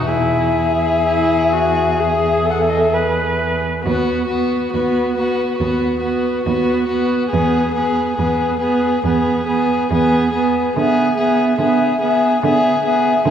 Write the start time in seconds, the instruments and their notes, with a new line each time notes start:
0.07 cello E2, viola E4, violin G#4 E5
1.05 viola E4
1.53 viola F#4
1.99 viola G#4
2.45 viola A4
2.51 violin F#5
2.61 violin E5
2.69 violin D#5
2.80 violin E5
2.93 viola B4
3.84 cello D#2, viola B3, violin F#4 B4
4.27 viola B3, violin F#4 B4
4.72 cello D#2, viola B3, violin F#4 B4
5.15 viola B3, violin F#4 B4
5.58 cello D#2, viola B3, violin F#4 B4
5.99 violin F#4 B4
6.04 viola B3
6.44 cello D#2, viola B3, violin F#4
6.49 violin B4
6.87 violin F#4 B4
6.91 viola B3
7.29 viola B3, violin G#4
7.33 cello E2, violin B4
7.74 viola B3, violin G#4 B4
8.16 cello E2, viola B3, violin G#4 B4
8.60 viola B3, violin G#4 B4
9.04 cello E2, viola B3, violin G#4 B4
9.47 viola B3, violin G#4 B4
9.91 cello E2, viola B3, violin G#4 B4
10.33 viola B3, violin G#4 B4
10.76 cello D3, viola B3, violin G#4 E5
11.17 viola B3, violin G#4 E5
11.58 cello D3, viola B3, violin G#4 E5
12.00 viola B3, violin G#4 E5
12.42 cello D3, viola B3, violin G#4 E5
12.83 viola B3, violin G#4 E5
13.24 cello D3, viola B3, violin G#4 E5